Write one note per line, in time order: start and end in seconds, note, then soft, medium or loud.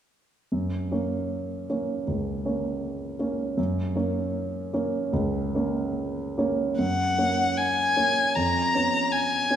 0.52 0.91 F#2 soft
0.92 1.65 A#3 soft
0.92 1.66 C#4 soft
0.92 1.66 C#5 soft
1.70 2.04 A#3 soft
1.70 2.04 C#4 soft
1.70 2.04 C#5 soft
2.07 2.44 C#2 soft
2.45 3.16 A#3 soft
2.45 3.16 C#4 soft
2.45 3.16 C#5 soft
3.19 3.54 A#3 soft
3.19 3.54 C#4 soft
3.19 3.54 C#5 soft
3.57 3.95 F#2 soft
3.96 4.70 A#3 soft
3.96 4.70 C#4 soft
3.96 4.70 C#5 soft
4.74 5.10 A#3 soft
4.74 5.10 C#4 soft
4.74 5.10 C#5 soft
5.13 5.54 C#2 soft
5.55 6.35 A#3 soft
5.55 6.35 C#4 soft
5.55 6.35 C#5 soft
6.38 6.75 A#3 soft
6.38 6.76 C#4 soft
6.38 6.76 C#5 soft
6.79 7.17 F#2 soft
6.79 7.59 F#5 soft
7.18 7.94 A#3 soft
7.18 7.94 C#4 soft
7.18 7.94 C#5 soft
7.57 8.37 G#5 medium
7.96 8.32 A#3 soft
7.96 8.32 C#4 soft
7.96 8.33 C#5 soft
8.35 8.74 F2 soft
8.35 9.13 A#5 medium
8.75 9.47 B3 soft
8.75 9.48 C#4 soft
8.75 9.48 C#5 soft
9.12 9.56 G#5 medium
9.50 9.56 B3 soft
9.50 9.56 C#4 soft
9.50 9.56 C#5 soft